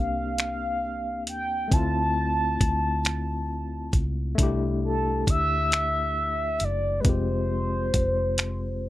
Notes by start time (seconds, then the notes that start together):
Already playing: C2 A#3 C4 D4 G4 F5
0.38 finger snap, closed hi-hat
1.27 D#2 G5, closed hi-hat
1.68 A3 C4, kick
1.72 D2 E4 F4 A5, closed hi-hat
2.61 D2, kick, closed hi-hat
3.05 finger snap, closed hi-hat
3.93 C#2, kick, closed hi-hat
4.35 C2 A3 D4, kick, closed hi-hat
4.40 E4 G4
4.84 A4
5.27 D2 E5, kick, closed hi-hat
5.72 finger snap, closed hi-hat
6.60 F#1, closed hi-hat
6.64 D5
7.00 G#3 B4
7.04 F1 C4 F4, kick, closed hi-hat
7.09 G4 C5
7.94 F1, kick, closed hi-hat
8.38 finger snap, closed hi-hat